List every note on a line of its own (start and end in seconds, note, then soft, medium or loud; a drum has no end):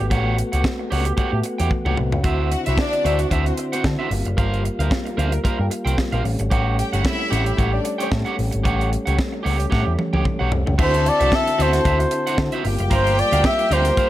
0.00 0.08 G#1 medium
0.00 2.20 A3 medium
0.00 2.20 B3 medium
0.00 4.07 F#4 medium
0.00 muted clean electric guitar stroke soft
0.10 0.41 A1 loud
0.10 0.35 G4 medium
0.10 0.36 C#5 medium
0.10 0.37 F#5 medium
0.10 kick loud
0.10 closed hi-hat medium
0.38 muted clean electric guitar stroke soft
0.38 closed hi-hat medium
0.52 0.61 C#2 medium
0.52 0.63 G4 soft
0.52 0.64 C#5 soft
0.52 0.64 F#5 medium
0.52 closed hi-hat soft
0.64 muted clean electric guitar stroke soft
0.64 kick loud
0.64 snare loud
0.79 muted clean electric guitar stroke soft
0.90 1.11 C#2 medium
0.90 1.12 G4 medium
0.90 1.06 C#5 loud
0.90 1.05 F#5 medium
0.90 open hi-hat medium
1.05 muted clean electric guitar stroke soft
1.05 closed hi-hat medium
1.17 1.39 G4 medium
1.17 1.32 C#5 medium
1.17 1.31 F#5 medium
1.17 muted picked electric bass stroke soft
1.17 kick loud
1.17 closed hi-hat medium
1.32 1.41 A2 medium
1.32 muted clean electric guitar stroke soft
1.44 muted clean electric guitar stroke soft
1.44 closed hi-hat medium
1.58 1.68 E2 medium
1.58 1.70 G4 soft
1.58 1.70 C#5 medium
1.58 1.72 G5 medium
1.58 closed hi-hat soft
1.71 muted clean electric guitar stroke soft
1.71 kick medium
1.71 high tom soft
1.85 1.94 C#2 medium
1.85 1.96 G4 medium
1.85 1.97 C#5 medium
1.85 1.98 F#5 medium
1.85 mid tom medium
1.97 2.13 C2 medium
1.97 muted clean electric guitar stroke soft
1.97 mid tom medium
2.12 2.21 C#2 medium
2.12 muted clean electric guitar stroke soft
2.12 floor tom medium
2.23 2.54 D2 loud
2.23 4.09 D3 medium
2.23 4.09 C4 medium
2.23 4.09 E4 medium
2.23 2.49 F#4 medium
2.23 2.49 C5 medium
2.23 2.50 E5 medium
2.23 kick loud
2.23 closed hi-hat medium
2.50 2.62 F#4 medium
2.50 2.63 F#5 medium
2.50 muted clean electric guitar stroke soft
2.50 closed hi-hat medium
2.66 2.75 C2 medium
2.66 2.76 E4 medium
2.66 2.77 F#4 soft
2.66 2.77 C5 soft
2.66 2.76 E5 medium
2.66 2.78 E5 medium
2.66 closed hi-hat soft
2.77 3.28 D4 loud
2.77 3.28 D5 loud
2.77 muted clean electric guitar stroke soft
2.77 kick loud
2.77 snare loud
2.93 muted clean electric guitar stroke soft
2.93 closed hi-hat soft
3.04 3.24 D2 medium
3.04 3.26 F#4 medium
3.04 3.20 C5 medium
3.04 3.19 E5 loud
3.04 closed hi-hat medium
3.19 muted clean electric guitar stroke soft
3.19 closed hi-hat medium
3.30 3.50 D2 loud
3.30 3.52 F#4 medium
3.30 3.46 C5 medium
3.30 3.45 E5 medium
3.30 kick medium
3.30 closed hi-hat medium
3.45 3.55 C4 medium
3.45 3.55 C5 medium
3.45 muted clean electric guitar stroke soft
3.45 closed hi-hat soft
3.57 muted clean electric guitar stroke soft
3.57 closed hi-hat medium
3.72 3.82 C4 medium
3.72 3.83 F#4 soft
3.72 3.82 C5 medium
3.72 3.84 C5 medium
3.72 3.85 F#5 medium
3.72 closed hi-hat medium
3.84 3.95 D3 medium
3.84 muted clean electric guitar stroke soft
3.84 kick loud
3.84 snare loud
3.99 4.11 F#4 medium
3.99 4.10 C5 medium
3.99 4.12 E5 medium
4.11 4.22 G1 loud
4.11 10.75 G3 medium
4.11 6.23 A#3 medium
4.11 6.23 F4 medium
4.11 muted clean electric guitar stroke soft
4.11 open hi-hat medium
4.25 4.34 F#1 medium
4.25 muted clean electric guitar stroke soft
4.25 closed hi-hat soft
4.37 4.68 G1 loud
4.37 4.62 A#4 medium
4.37 4.63 C5 medium
4.37 4.63 F5 medium
4.37 kick loud
4.37 closed hi-hat medium
4.54 closed hi-hat soft
4.64 muted clean electric guitar stroke soft
4.64 closed hi-hat medium
4.79 4.88 D2 medium
4.79 4.91 A#4 soft
4.79 4.91 C5 medium
4.79 4.92 F5 medium
4.79 closed hi-hat soft
4.91 muted clean electric guitar stroke medium
4.91 kick loud
4.91 snare loud
5.05 muted clean electric guitar stroke medium
5.05 closed hi-hat soft
5.17 5.37 D2 medium
5.17 5.39 A#4 medium
5.17 5.32 C5 loud
5.17 5.31 F5 loud
5.17 closed hi-hat medium
5.32 muted clean electric guitar stroke medium
5.32 closed hi-hat medium
5.44 5.66 A#4 medium
5.44 5.59 C5 medium
5.44 5.58 F5 medium
5.44 muted picked electric bass stroke soft
5.44 kick medium
5.44 closed hi-hat medium
5.59 5.68 G2 medium
5.59 muted clean electric guitar stroke soft
5.71 muted clean electric guitar stroke soft
5.71 closed hi-hat medium
5.85 5.94 C2 medium
5.85 5.97 A#4 medium
5.85 5.97 C5 medium
5.85 5.99 G5 medium
5.85 closed hi-hat soft
5.98 muted clean electric guitar stroke soft
5.98 kick loud
5.98 snare loud
6.12 6.21 A#1 medium
6.12 6.24 A#4 medium
6.12 6.24 C5 medium
6.12 6.25 F5 medium
6.12 closed hi-hat soft
6.24 6.35 A1 medium
6.24 10.75 A3 medium
6.24 10.75 C#4 medium
6.24 muted clean electric guitar stroke soft
6.24 open hi-hat medium
6.39 6.48 G#1 medium
6.39 muted clean electric guitar stroke soft
6.39 closed hi-hat soft
6.50 6.81 A1 loud
6.50 6.76 G4 medium
6.50 6.76 C#5 medium
6.50 6.77 F#5 medium
6.50 kick loud
6.50 closed hi-hat medium
6.78 6.90 G4 medium
6.78 6.91 G5 medium
6.78 muted clean electric guitar stroke soft
6.78 closed hi-hat medium
6.93 7.02 G1 medium
6.93 7.03 F#4 medium
6.93 7.03 G4 soft
6.93 7.04 C#5 soft
6.93 7.04 F#5 medium
6.93 7.03 F#5 medium
6.93 closed hi-hat soft
7.04 7.55 E4 loud
7.04 7.55 E5 loud
7.04 muted clean electric guitar stroke soft
7.04 kick loud
7.04 snare loud
7.19 muted clean electric guitar stroke soft
7.30 7.51 A1 medium
7.30 7.52 G4 medium
7.30 7.46 C#5 medium
7.30 7.44 F#5 loud
7.30 closed hi-hat medium
7.46 muted clean electric guitar stroke medium
7.46 closed hi-hat medium
7.57 7.78 A1 medium
7.57 7.79 G4 medium
7.57 7.72 C#5 medium
7.57 7.71 F#5 medium
7.57 kick loud
7.57 closed hi-hat medium
7.73 7.82 D4 medium
7.73 7.83 D5 medium
7.73 muted clean electric guitar stroke soft
7.84 muted clean electric guitar stroke soft
7.84 closed hi-hat medium
7.98 8.10 C#4 medium
7.98 8.09 G4 medium
7.98 8.10 C#5 medium
7.98 8.11 G5 medium
7.98 closed hi-hat medium
8.10 8.23 A2 medium
8.10 muted clean electric guitar stroke medium
8.10 kick loud
8.10 snare loud
8.25 8.35 G4 medium
8.25 8.36 C#5 medium
8.25 8.37 F#5 medium
8.25 closed hi-hat soft
8.36 8.49 A1 medium
8.36 muted clean electric guitar stroke soft
8.36 open hi-hat medium
8.51 8.62 G#1 medium
8.51 muted clean electric guitar stroke soft
8.51 closed hi-hat soft
8.63 8.95 A1 loud
8.63 8.89 G4 medium
8.63 8.89 C#5 medium
8.63 8.90 F#5 loud
8.63 kick loud
8.63 closed hi-hat medium
8.81 closed hi-hat soft
8.91 muted clean electric guitar stroke soft
8.91 closed hi-hat medium
9.06 9.15 C#2 medium
9.06 9.17 G4 soft
9.06 9.17 C#5 medium
9.06 9.18 F#5 medium
9.06 closed hi-hat soft
9.18 muted clean electric guitar stroke soft
9.18 kick loud
9.18 snare loud
9.33 muted clean electric guitar stroke soft
9.43 9.65 C#2 medium
9.43 9.65 G4 medium
9.43 9.59 C#5 medium
9.43 9.57 F#5 medium
9.43 open hi-hat medium
9.58 muted clean electric guitar stroke soft
9.58 closed hi-hat medium
9.70 9.83 A2 medium
9.70 9.92 G4 medium
9.70 9.86 C#5 medium
9.70 9.84 F#5 medium
9.70 kick loud
9.70 snare soft
9.85 9.95 E2 medium
9.85 muted clean electric guitar stroke medium
9.99 muted clean electric guitar stroke soft
9.99 high tom medium
10.13 10.22 C#2 medium
10.13 10.24 G4 soft
10.13 10.25 C#5 medium
10.13 10.26 G5 medium
10.13 high tom medium
10.25 muted clean electric guitar stroke soft
10.25 kick loud
10.25 mid tom medium
10.39 10.53 B1 medium
10.39 10.51 G4 medium
10.39 10.52 C#5 medium
10.39 10.52 F#5 medium
10.52 10.63 C2 medium
10.52 muted clean electric guitar stroke soft
10.52 floor tom loud
10.67 10.76 C#2 loud
10.67 muted clean electric guitar stroke soft
10.67 floor tom medium
10.78 11.09 D2 loud
10.78 12.64 D3 medium
10.78 12.64 C4 medium
10.78 12.64 E4 medium
10.78 11.03 F#4 medium
10.78 12.64 F#4 medium
10.78 12.35 A4 loud
10.78 11.03 C5 medium
10.78 11.10 C5 loud
10.78 11.04 E5 loud
10.78 12.35 A5 loud
10.78 kick loud
10.78 crash loud
10.94 closed hi-hat medium
11.05 11.37 D5 loud
11.05 muted clean electric guitar stroke soft
11.05 closed hi-hat medium
11.19 11.29 C2 medium
11.19 11.31 F#4 soft
11.19 11.32 C5 medium
11.19 11.32 E5 medium
11.19 closed hi-hat medium
11.32 11.63 E5 loud
11.32 muted clean electric guitar stroke soft
11.32 kick loud
11.32 snare loud
11.47 muted clean electric guitar stroke soft
11.47 closed hi-hat medium
11.58 11.78 D2 medium
11.58 11.80 F#4 loud
11.58 11.73 C5 loud
11.58 12.67 C5 loud
11.58 11.72 E5 loud
11.58 closed hi-hat medium
11.73 muted clean electric guitar stroke soft
11.73 snare soft
11.73 closed hi-hat medium
11.85 12.04 D2 loud
11.85 12.06 F#4 medium
11.85 11.99 C5 medium
11.85 11.98 E5 medium
11.85 kick loud
11.85 closed hi-hat medium
11.99 muted clean electric guitar stroke soft
11.99 closed hi-hat medium
12.11 muted clean electric guitar stroke soft
12.11 closed hi-hat medium
12.27 12.38 F#4 medium
12.27 12.39 C5 medium
12.27 12.40 F#5 medium
12.27 closed hi-hat medium
12.38 12.49 D3 loud
12.38 kick loud
12.38 snare loud
12.52 12.65 F#4 medium
12.52 12.65 C5 medium
12.52 12.66 E5 loud
12.52 closed hi-hat soft
12.64 12.76 G1 medium
12.64 14.10 G3 medium
12.64 14.10 A#3 medium
12.64 14.10 F4 medium
12.64 14.10 G4 loud
12.64 14.10 G5 loud
12.64 muted clean electric guitar stroke medium
12.64 open hi-hat medium
12.78 12.88 F#1 loud
12.78 muted clean electric guitar stroke medium
12.78 closed hi-hat medium
12.90 13.21 G1 loud
12.90 13.16 A#4 medium
12.90 13.16 C5 medium
12.90 13.21 C5 loud
12.90 13.17 F5 medium
12.90 kick loud
12.90 closed hi-hat medium
13.07 closed hi-hat medium
13.18 13.48 D5 loud
13.18 muted clean electric guitar stroke soft
13.18 closed hi-hat medium
13.32 13.41 D2 loud
13.32 13.43 A#4 soft
13.32 13.44 C5 soft
13.32 13.44 F5 medium
13.32 closed hi-hat medium
13.44 13.74 E5 loud
13.44 muted clean electric guitar stroke soft
13.44 kick loud
13.44 snare loud
13.59 muted clean electric guitar stroke soft
13.59 closed hi-hat medium
13.71 13.90 D2 medium
13.71 13.92 A#4 medium
13.71 13.85 C5 medium
13.71 14.10 C5 loud
13.71 13.84 F5 medium
13.71 closed hi-hat medium
13.85 muted clean electric guitar stroke soft
13.85 snare soft
13.85 closed hi-hat medium
13.97 14.10 A#4 medium
13.97 14.10 C5 medium
13.97 14.10 F5 medium
13.97 muted picked electric bass stroke soft
13.97 kick loud
13.97 closed hi-hat medium